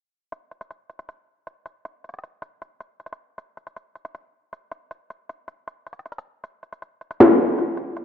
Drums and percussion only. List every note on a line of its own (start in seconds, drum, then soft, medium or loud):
0.32 closed hi-hat medium
0.51 closed hi-hat soft
0.61 closed hi-hat medium
0.71 closed hi-hat medium
0.90 closed hi-hat soft
0.99 closed hi-hat medium
1.09 closed hi-hat medium
1.47 closed hi-hat medium
1.66 closed hi-hat medium
1.85 closed hi-hat medium
2.04 closed hi-hat soft
2.09 closed hi-hat medium
2.14 closed hi-hat medium
2.19 closed hi-hat medium
2.24 closed hi-hat medium
2.42 closed hi-hat medium
2.62 closed hi-hat medium
2.80 closed hi-hat medium
3.00 closed hi-hat soft
3.06 closed hi-hat medium
3.13 closed hi-hat medium
3.38 closed hi-hat medium
3.57 closed hi-hat soft
3.67 closed hi-hat medium
3.76 closed hi-hat medium
3.95 closed hi-hat soft
4.05 closed hi-hat medium
4.15 closed hi-hat medium
4.53 closed hi-hat medium
4.72 closed hi-hat medium
4.91 closed hi-hat medium
5.10 closed hi-hat medium
5.29 closed hi-hat medium
5.48 closed hi-hat medium
5.68 closed hi-hat medium
5.87 closed hi-hat medium
5.93 closed hi-hat medium
5.99 closed hi-hat medium
6.06 closed hi-hat medium
6.12 closed hi-hat medium
6.18 closed hi-hat medium
6.44 closed hi-hat medium
6.63 closed hi-hat soft
6.73 closed hi-hat medium
6.82 closed hi-hat medium
7.01 closed hi-hat soft
7.11 closed hi-hat medium
7.20 snare loud
7.20 clap medium
7.20 closed hi-hat medium
7.59 closed hi-hat medium
7.77 closed hi-hat medium
7.97 closed hi-hat medium